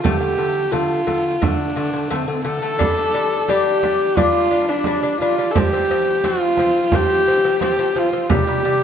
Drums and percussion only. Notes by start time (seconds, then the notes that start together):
0.05 frame drum
0.39 frame drum
0.73 frame drum
1.08 frame drum
1.43 frame drum
1.78 frame drum
2.11 frame drum
2.46 frame drum
2.81 frame drum
3.15 frame drum
3.49 frame drum
3.83 frame drum
4.17 frame drum
4.51 frame drum
4.84 frame drum
5.20 frame drum
5.56 frame drum
5.91 frame drum
6.24 frame drum
6.58 frame drum
6.92 frame drum
7.28 frame drum
7.61 frame drum
7.95 frame drum
8.30 frame drum
8.63 frame drum